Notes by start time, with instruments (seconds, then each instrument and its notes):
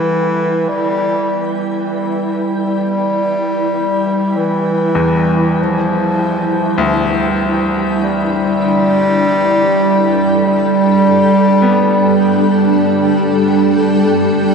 Already playing: bass clarinet E3, synth drone G3, ambient pad E4 B4 G5
0.69 bass clarinet G3
1.91 bass clarinet G3
4.37 bass clarinet E3
4.95 grand piano E2
5.57 ambient pad G3
5.61 bass clarinet F3
6.78 grand piano D2
6.85 ambient pad D4
8.04 bass clarinet G3
9.04 ambient pad A4
10.47 bass clarinet G3
11.62 grand piano B3